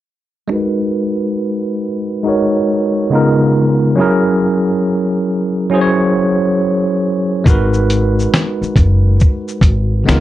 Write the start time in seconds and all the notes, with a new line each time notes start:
0.48 G#3 D#4 F#4
0.52 A#4 B4
2.23 G#3 D#4 F#4 A#4
2.28 C#5
3.10 C#3 G#3 B3 D#4
3.14 F4 A#4
3.96 F#3 C#4 E4
4.00 G#4 A#4
5.70 F#3 C#4 E4 G#4
5.75 C5
5.81 C#5
7.44 G#1 G#3 D#4 F#4, kick, shaker
7.49 A#4 B4
7.74 shaker
7.90 closed hi-hat, shaker
8.19 shaker
8.34 snare, shaker
8.62 muted upright bass stroke, shaker
8.76 F#1, kick, closed hi-hat, shaker
9.20 kick, shaker
9.48 shaker
9.61 G#1, kick, closed hi-hat, shaker
10.04 C#2 C#3 G#3 B3 D#4
10.09 F4 A#4, snare, shaker